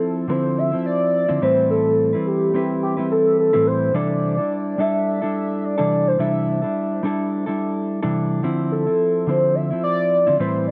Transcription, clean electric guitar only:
Already playing: F3 C4 E4
0.28 D3 F3 C4 E4
0.72 F3 C4 E4
1.28 D3 F3 C4 E4
1.41 A2 E3 G3 C4 E4 B4
2.13 G3 C4 E4 B4
2.53 G3 C4 E4 B4
2.97 G3 C4 E4 B4
3.53 A2 E3 G3 C4 E4 B4
3.94 C3 E3 G3 D4 E4 A4
4.37 G3 D4 E4 A4
4.78 G3 D4 E4 A4
5.22 G3 D4 E4 A4
5.78 C3 E3 G3 D4 E4 A4
6.19 C3 E3 G3 D4 E4 A4
6.62 G3 D4 E4 A4
7.03 G3 D4 E4 A4
7.46 G3 D4 E4 A4
8.02 C3 E3 G3 D4 E4 A4
8.43 D3 F3 C4 E4
8.87 F3 C4 E4
9.27 D3 F3 C4 E4
9.71 F3 C4 E4
10.27 D3 F3 C4 E4
10.39 A2 E3 G3 C4 E4 B4

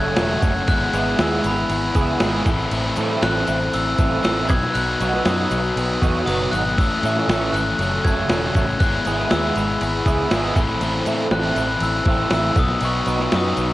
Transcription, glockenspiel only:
Already playing: G#6
0.68 F#6
1.21 E6
1.47 B5
3.22 F#6
3.74 E6
4.24 E6
4.49 G#6
4.74 F#6
5.19 E6
5.25 D#6
6.26 D#6
6.51 F#6
6.78 E6
7.53 F#6
8.04 G#6
8.79 F#6
9.31 E6
9.57 B5
11.32 F#6
11.83 E6
12.34 E6
12.59 D#6
12.85 C#6
13.35 D#6

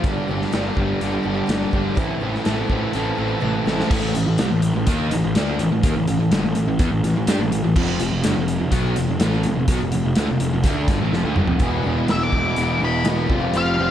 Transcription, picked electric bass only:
0.04 G1
0.29 G1
0.54 G1
0.77 G1
1.02 G1
1.26 G1
1.49 G1
1.73 G1
1.97 A1
2.22 A1
2.47 A1
2.69 A1
2.95 A1
3.19 A1
3.43 A1
3.67 A1
3.91 A1
4.17 A1
4.28 A1
4.40 C2
4.52 A1
4.76 A1
4.87 D#2
5.12 A1
5.25 A1
5.36 D2
5.60 A1
5.71 A1
5.84 D#2
5.95 A1
6.07 A1
6.19 A1
6.31 G1
6.44 A1
6.56 A1
6.68 A1
6.80 E2
6.93 A1
7.04 A1
7.16 A1
7.28 G2
7.39 A1
7.52 A1
7.63 A1
7.76 F1
8.01 F1
8.12 F1
8.25 G1
8.37 F1
8.61 F1
8.72 B1
8.97 F1
9.10 F1
9.22 A1
9.45 F1
9.57 F1
9.68 B1
9.81 F1
9.94 F1
10.05 F1
10.17 D2
10.29 F1
10.41 F1
10.53 F1
10.64 D2
10.88 G1
11.00 A1
11.12 F1
11.24 D2
11.36 G1
11.47 F1
11.60 E1
11.85 E1
12.09 E1
12.32 E1
12.57 E1
12.81 E1
13.05 E1
13.30 F1
13.54 F1
13.79 F1

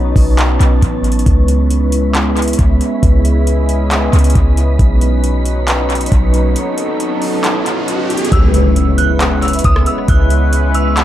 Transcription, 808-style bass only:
Already playing: B1
0.16 B1
0.60 B1
0.83 A1
1.26 C#2
2.59 C#2
3.03 C#2
4.13 C#2
4.36 C#2
4.79 B1
6.12 B1
8.32 C#2
9.65 C#2
10.09 C#2

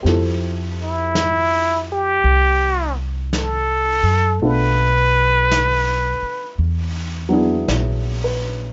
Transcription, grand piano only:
0.03 C4 E4 G4
0.07 F3 A4
4.42 A3 B3 D4 F4 A4
7.29 F#3 B3 D4 E4
7.33 G#4
7.69 C#5
8.24 B4

